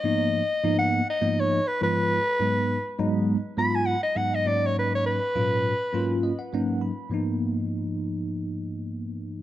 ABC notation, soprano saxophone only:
X:1
M:4/4
L:1/16
Q:"Swing 16ths" 1/4=102
K:G#dor
V:1 name="Soprano saxophone"
d4- d f2 d2 c2 B B4- | B4 z4 b g f d f d =d c | B c B8 z6 | z16 |]